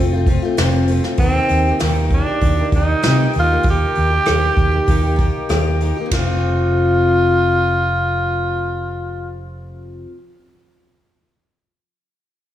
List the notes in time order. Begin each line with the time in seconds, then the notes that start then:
Already playing: F1 F3
0.00 A3 C4 F4
0.13 A3 C4 F4
0.17 F3
0.26 F3 A3 C4, kick, open hi-hat
0.31 F4
0.42 F3 A3 C4 F4
0.57 F1 F2 C3 F3 A3 C4 F4, snare, open hi-hat
0.87 F3 A3 C4, open hi-hat
0.92 F4
1.04 F3 A3 C4 F4, snare
1.17 D#2 D#3 C4, kick, open hi-hat
1.21 A#3 D#4 G4
1.49 D#2, open hi-hat
1.67 A#3 D#4 G4
1.79 D#2 D#3 A#3, snare, open hi-hat
1.83 D#4 G4
2.10 D4, kick, open hi-hat
2.26 A#3 D#4 G4
2.41 D#2 D#3 A#3 D#4, kick, open hi-hat
2.46 G4
2.57 D#4 G4
2.61 A#3
2.72 D#2 D#3 A#3 D#4, kick, open hi-hat
2.77 G4
3.02 C3 D#3, snare, open hi-hat
3.06 A#3 D#4 G4
3.33 D#2 D#3 A#3 D#4, open hi-hat
3.38 F4 G4
3.51 A#3 D#4 G4
3.63 D#2, kick, open hi-hat
3.67 D#3 A#3 D#4 G4
3.95 D#2, open hi-hat
4.10 A#3 D#4 G4
4.25 D#2 D#3 A#3 D#4 G4, cross-stick, open hi-hat
4.56 D#2, kick, open hi-hat
4.71 A#3 D#4 G4
4.86 D#2 D#3 A#3 D#4, kick, open hi-hat
4.91 G4
5.02 D#4 G4
5.06 A#3
5.16 D#3 A#3 D#4 G4, kick, open hi-hat
5.49 D#2 D#3 A#3 D#4 G4, cross-stick, open hi-hat
5.80 D#3 A#3 D#4 G4, open hi-hat
5.96 D#4 G4
6.00 A#3
6.06 F2
6.11 F1 C3 F4, kick, snare, ride bell
6.15 F3 A3
6.23 C4
6.27 F4